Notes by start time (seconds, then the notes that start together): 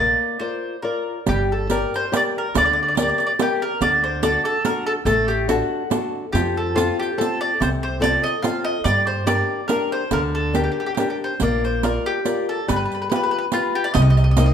Already playing: D5
0.00 A#1 A#3
0.40 F4 A#4 C5 D5
0.82 F4 A#4 D5
1.26 G1 G3 G4, riq
1.52 A4
1.70 G4 A#4 D5, riq
1.94 C5, riq
2.12 G4 A#4 D5, riq
2.16 D5
2.38 A#4
2.54 D2 D3 D5, riq
2.65 D5
2.73 D5
2.83 D5
2.88 D5
2.95 G4 A#4 D5, riq
3.02 D5
3.09 D5
3.18 D5, riq
3.27 D5
3.39 G4 A#4 D5, riq
3.62 A#4
3.81 D2 D3 D5, riq
4.04 C5
4.22 D4 F#4 A4 D5, riq
4.45 A4, riq
4.65 D4 F#4 A4 A#4, riq
4.87 A4
5.05 A1 A3 A4, riq
5.28 G4, riq
5.48 D4 F#4 A4, riq
5.90 D4 F#4 A4, riq
6.33 F2 F3 G4, riq
6.57 A4
6.75 C4 F4 A4, riq
6.99 G4, riq
7.18 C4 F4 A4, riq
7.41 D5
7.60 C2 C3 C5, riq
7.83 C5
8.00 C4 F4 A4 D5, riq
8.24 D#5, riq
8.42 C4 F4 A4 F5, riq
8.64 D#5
8.84 G2 G3 D5, riq
9.07 C5
9.26 D4 G4 A#4 D5, riq
9.68 D4 G4 A#4, riq
9.92 C5
10.11 D2 D3 A#4, riq
10.35 A4
10.54 D4 G4 A#4, riq
10.64 G4
10.72 G4
10.80 G4
10.86 G4
10.95 D4 G4, riq
10.99 G4 A#4
11.10 G4
11.24 C5
11.40 A#1 A#3 D5, riq
11.64 C5, riq
11.83 F4 A#4 D5, riq
12.06 G4
12.25 F4 A#4 D5, riq
12.49 A4
12.68 G1 G3 B4, riq
12.76 B4
12.85 B4
12.92 B4, riq
13.02 B4
13.10 F4 G4 B4, riq
13.16 B4
13.24 B4
13.31 B4
13.38 B4
13.52 F4 G4 B4, riq
13.75 G4
13.84 D5
13.94 C2 C3 D#5, riq
14.02 D#5
14.10 D#5
14.17 D#5, riq
14.24 D#5
14.31 D#5
14.37 A#3 C4 D#4 D#5, riq
14.46 D#5